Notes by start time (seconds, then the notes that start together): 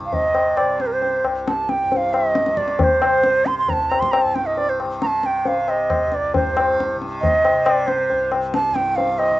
Already playing: C2 G2
0.00 C3
0.06 F5
0.13 D#5, tabla tin, tabla ge
0.35 tabla na
0.57 D5, tabla na
0.61 C3
0.80 C5, tabla te
0.86 A#4
0.93 C5
1.02 tabla tin
1.24 C2, tabla na
1.47 A5, tabla te
1.69 G5, tabla te
1.84 G2
1.92 G5, tabla tin
1.97 F5
2.13 E5, tabla na
2.28 D#5
2.35 tabla te
2.46 C3, tabla te
2.57 D5, tabla ke
2.68 tabla te
2.79 D5, tabla tin, tabla ge
2.84 C5
3.02 C3, tabla na
3.24 tabla te
3.46 C6, tabla te
3.58 C6
3.65 C2, tabla tin, tabla ge
3.69 A5 A#5
3.90 A#5, tabla na
4.00 C6, tabla ke
4.11 A#5, tabla na
4.22 G2 A5
4.35 G5, tabla te
4.46 D#5
4.55 D5 D#5, tabla tin
4.69 C5
4.80 tabla na
4.85 C3
5.02 A#5, tabla te
5.07 A5
5.23 G5, tabla te
5.45 C3 F5, tabla tin
5.68 D#5, tabla na
5.90 tabla na, tabla ge
6.06 C2
6.12 D5, tabla te
6.34 G2 C5, tabla tin, tabla ge
6.57 tabla na
6.80 tabla te
6.95 C3
7.02 tabla te
7.21 D#5, tabla tin, tabla ge
7.45 tabla na
7.53 C3
7.66 D5, tabla na
7.87 C5, tabla te
8.10 C2, tabla tin
8.32 tabla na
8.54 A5, tabla te
8.71 G2 G5
8.76 tabla te
8.96 F5, tabla tin
9.18 D#5, tabla na
9.30 C3